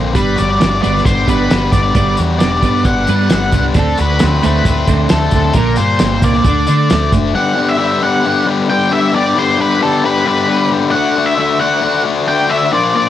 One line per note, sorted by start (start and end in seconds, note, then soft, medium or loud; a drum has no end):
0.00 0.13 A#1 medium
0.00 0.13 A#2 medium
0.00 0.13 D3 medium
0.00 0.14 A#3 medium
0.00 0.14 C4 medium
0.13 0.35 G1 medium
0.13 1.27 G3 medium
0.13 0.36 G3 medium
0.13 0.36 B3 medium
0.13 0.37 D4 medium
0.13 0.38 B4 medium
0.13 kick loud
0.13 closed hi-hat medium
0.36 0.59 G1 medium
0.36 0.58 G3 medium
0.36 0.58 B3 medium
0.36 1.97 F#4 medium
0.36 0.81 D5 loud
0.36 closed hi-hat medium
0.59 0.81 G1 medium
0.59 0.80 G3 medium
0.59 0.81 B3 medium
0.59 1.04 D4 medium
0.59 snare loud
0.59 closed hi-hat medium
0.81 1.04 G1 medium
0.81 1.04 G3 medium
0.81 1.49 B3 medium
0.81 1.04 B3 medium
0.81 1.04 D4 loud
0.81 1.05 D5 loud
0.81 closed hi-hat medium
0.97 snare soft
1.05 1.26 G1 medium
1.05 1.26 B3 medium
1.05 1.72 D4 medium
1.05 1.28 C5 medium
1.05 kick loud
1.05 closed hi-hat medium
1.27 1.48 G1 medium
1.27 1.49 G3 medium
1.27 1.93 G3 medium
1.27 1.49 B3 medium
1.27 1.49 D4 loud
1.27 1.70 B4 medium
1.27 kick medium
1.27 closed hi-hat medium
1.50 1.71 G1 medium
1.50 1.70 G3 medium
1.50 2.62 B3 medium
1.50 1.71 B3 medium
1.50 snare loud
1.50 closed hi-hat medium
1.72 1.93 G1 medium
1.72 1.93 G3 medium
1.72 1.93 B3 medium
1.72 2.39 D4 medium
1.72 2.14 D5 medium
1.72 kick medium
1.72 closed hi-hat medium
1.94 2.16 G1 medium
1.94 3.07 G3 medium
1.94 2.17 G3 medium
1.94 2.17 B3 medium
1.94 2.17 D4 medium
1.94 kick loud
1.94 closed hi-hat medium
2.17 2.39 E2 medium
2.17 3.30 F#4 medium
2.17 closed hi-hat medium
2.39 2.61 E1 medium
2.39 2.60 G3 medium
2.39 2.61 B3 medium
2.39 2.85 D4 medium
2.39 2.86 D5 medium
2.39 snare loud
2.39 closed hi-hat medium
2.63 2.83 G2 medium
2.63 2.84 G3 medium
2.63 3.30 B3 medium
2.63 2.84 B3 medium
2.63 2.85 D4 loud
2.63 kick medium
2.63 closed hi-hat medium
2.85 3.06 G1 medium
2.85 3.06 G3 medium
2.85 3.06 B3 medium
2.85 3.53 D4 medium
2.85 3.32 F#5 medium
2.85 kick loud
2.85 closed hi-hat medium
3.07 3.29 G2 medium
3.07 3.75 G3 medium
3.07 3.29 G3 medium
3.07 3.30 B3 loud
3.07 3.30 D4 loud
3.07 closed hi-hat medium
3.30 3.51 G1 medium
3.30 3.76 B3 medium
3.30 3.63 F#5 medium
3.30 snare loud
3.30 closed hi-hat medium
3.52 3.74 C2 medium
3.52 3.73 G3 medium
3.52 3.74 B3 medium
3.52 4.21 D4 medium
3.52 kick medium
3.52 closed hi-hat medium
3.74 3.96 D2 medium
3.74 3.96 D3 medium
3.74 4.87 D3 medium
3.74 3.97 A3 medium
3.74 3.97 C4 loud
3.74 kick loud
3.74 closed hi-hat medium
3.79 4.00 A4 medium
3.98 4.19 D2 medium
3.98 4.18 D3 medium
3.98 4.18 A3 medium
3.98 5.10 F#4 medium
3.98 4.45 B4 medium
3.98 closed hi-hat medium
4.19 4.42 D2 medium
4.19 4.40 D3 medium
4.19 4.40 A3 medium
4.19 4.64 C4 medium
4.19 snare loud
4.19 closed hi-hat medium
4.43 4.64 D2 medium
4.43 4.64 D3 medium
4.43 5.09 A3 medium
4.43 4.64 A3 medium
4.43 4.65 C4 loud
4.43 4.86 B4 medium
4.43 closed hi-hat medium
4.65 4.86 D2 medium
4.65 4.86 A3 medium
4.65 5.32 C4 medium
4.65 kick loud
4.65 closed hi-hat medium
4.87 5.08 D2 medium
4.87 5.55 D3 medium
4.87 5.09 D3 loud
4.87 5.10 A3 medium
4.87 5.10 C4 loud
4.87 kick medium
4.87 closed hi-hat medium
5.09 5.31 D2 medium
5.09 5.55 A3 medium
5.09 5.55 A4 medium
5.09 snare loud
5.09 closed hi-hat medium
5.31 5.53 D2 medium
5.31 5.54 D3 medium
5.31 5.55 C4 medium
5.31 kick medium
5.31 closed hi-hat medium
5.35 5.54 A3 medium
5.53 5.76 A#1 medium
5.53 5.77 A#2 medium
5.53 6.45 A#2 medium
5.53 5.77 D3 medium
5.53 5.77 A#3 loud
5.53 5.76 A#4 medium
5.53 kick loud
5.53 closed hi-hat medium
5.76 5.98 G2 medium
5.76 5.98 A#2 medium
5.76 5.99 D3 medium
5.76 6.45 F4 medium
5.76 6.24 C5 medium
5.76 closed hi-hat medium
5.99 6.21 G1 medium
5.99 6.21 A#2 medium
5.99 6.21 D3 medium
5.99 6.45 C4 medium
5.99 snare loud
5.99 closed hi-hat medium
6.22 6.43 C2 medium
6.22 6.44 A#2 loud
6.22 6.45 D3 medium
6.22 6.45 A#3 medium
6.22 6.45 A#3 loud
6.22 7.09 D5 loud
6.22 kick medium
6.22 closed hi-hat medium
6.33 snare soft
6.44 6.65 D2 medium
6.44 6.66 D3 medium
6.44 6.67 A3 medium
6.44 6.67 D4 loud
6.44 kick loud
6.44 closed hi-hat medium
6.67 7.34 D3 medium
6.67 6.89 D3 medium
6.67 6.89 A3 loud
6.67 6.89 D4 loud
6.67 closed hi-hat medium
6.90 7.11 D2 medium
6.90 7.11 D3 medium
6.90 7.35 A3 medium
6.90 7.11 A3 medium
6.90 snare loud
6.90 closed hi-hat medium
7.12 7.33 F#1 medium
7.12 7.33 D3 medium
7.12 7.33 A3 medium
7.12 7.35 D4 medium
7.12 kick medium
7.12 closed hi-hat medium
7.34 7.55 G2 medium
7.34 7.55 D3 medium
7.34 7.56 G3 loud
7.34 7.57 B3 medium
7.34 7.57 D4 loud
7.34 7.58 G4 loud
7.34 7.70 F#5 loud
7.55 7.78 G2 medium
7.55 7.78 D3 medium
7.55 7.80 G3 medium
7.55 7.80 B3 medium
7.55 7.80 D4 medium
7.55 7.81 G4 medium
7.68 8.03 E5 loud
7.78 8.01 G2 medium
7.78 8.01 D3 medium
7.78 8.02 G3 loud
7.78 8.03 B3 loud
7.78 8.03 D4 loud
7.78 8.04 G4 loud
8.02 8.23 G2 medium
8.02 8.24 D3 medium
8.02 8.24 G3 loud
8.02 8.25 B3 medium
8.02 8.26 D4 medium
8.02 8.26 G4 loud
8.02 8.44 F#5 medium
8.24 8.44 G2 loud
8.24 8.45 D3 loud
8.24 8.46 G3 loud
8.24 8.46 B3 loud
8.24 8.48 D4 loud
8.24 8.48 G4 loud
8.46 8.68 G2 medium
8.46 8.69 D3 medium
8.46 8.70 G3 medium
8.46 8.70 B3 medium
8.46 8.71 D4 medium
8.46 8.71 G4 medium
8.69 8.90 G2 medium
8.69 8.91 D3 medium
8.69 8.91 G3 loud
8.69 8.91 B3 loud
8.69 8.93 D4 loud
8.69 8.93 G4 loud
8.69 8.93 G5 loud
8.91 9.12 G2 medium
8.91 9.13 D3 medium
8.91 9.13 G3 medium
8.91 9.14 B3 medium
8.91 9.16 D4 medium
8.91 9.15 G4 medium
8.91 9.15 E5 loud
9.13 9.35 G2 medium
9.13 9.36 D3 medium
9.13 9.36 G3 loud
9.13 9.37 B3 loud
9.13 9.38 D4 loud
9.13 9.38 G4 loud
9.13 9.38 D5 medium
9.36 9.56 G2 medium
9.36 9.58 D3 medium
9.36 9.58 G3 medium
9.36 9.59 B3 loud
9.36 9.60 D4 medium
9.36 9.60 G4 medium
9.36 9.61 C5 medium
9.58 9.79 G2 medium
9.58 9.81 D3 medium
9.58 9.81 G3 loud
9.58 9.82 B3 loud
9.58 9.83 D4 loud
9.58 9.83 G4 loud
9.58 9.82 B4 medium
9.81 10.02 G2 medium
9.81 10.03 D3 loud
9.81 10.04 G3 loud
9.81 10.04 B3 loud
9.81 10.06 D4 medium
9.81 10.05 G4 medium
9.81 10.05 A4 medium
10.04 10.24 G2 medium
10.04 10.25 D3 medium
10.04 10.26 G3 loud
10.04 10.26 B3 loud
10.04 10.27 D4 loud
10.04 10.27 G4 loud
10.04 10.26 B4 medium
10.26 10.47 G2 medium
10.26 10.47 D3 medium
10.26 10.48 G3 medium
10.26 10.48 B3 medium
10.26 10.50 D4 medium
10.26 10.50 G4 medium
10.26 10.69 B4 medium
10.48 10.70 G2 loud
10.48 10.71 D3 loud
10.48 10.71 G3 loud
10.48 10.72 B3 loud
10.48 10.73 D4 loud
10.48 10.73 G4 loud
10.71 10.92 G2 medium
10.71 10.92 D3 medium
10.71 10.93 G3 medium
10.71 10.93 B3 medium
10.71 10.94 D4 medium
10.71 10.93 G4 medium
10.91 11.15 D3 medium
10.91 11.16 A3 loud
10.91 11.17 D4 loud
10.91 11.27 F#5 loud
10.96 11.17 F#4 loud
11.16 11.36 D3 medium
11.16 11.37 A3 medium
11.16 11.39 D4 loud
11.16 11.39 F#4 loud
11.26 11.61 E5 loud
11.38 11.58 D3 medium
11.38 11.59 A3 loud
11.38 11.61 D4 loud
11.38 11.60 F#4 loud
11.59 11.80 D3 loud
11.59 11.81 A3 medium
11.59 11.82 D4 loud
11.59 11.82 F#4 loud
11.59 12.02 F#5 medium
11.82 12.03 D3 loud
11.82 12.04 A3 loud
11.82 12.05 D4 loud
11.82 12.05 F#4 loud
12.04 12.26 D3 medium
12.04 12.26 A3 medium
12.04 12.28 D4 medium
12.04 12.28 F#4 medium
12.27 12.48 D3 medium
12.27 12.49 A3 loud
12.27 12.51 D4 loud
12.27 12.50 F#4 loud
12.27 12.51 G5 loud
12.50 12.71 D3 medium
12.50 12.71 A3 medium
12.50 12.74 D4 medium
12.50 12.72 F#4 loud
12.50 12.70 E5 medium
12.72 12.93 A#2 medium
12.72 12.94 F3 medium
12.72 12.95 A#3 loud
12.72 12.96 D4 loud
12.72 12.96 F4 loud
12.72 12.93 D5 medium
12.95 13.09 A#2 medium
12.95 13.09 F3 medium
12.95 13.09 A#3 medium
12.95 13.09 D4 medium
12.95 13.09 F4 loud
12.95 13.09 D5 medium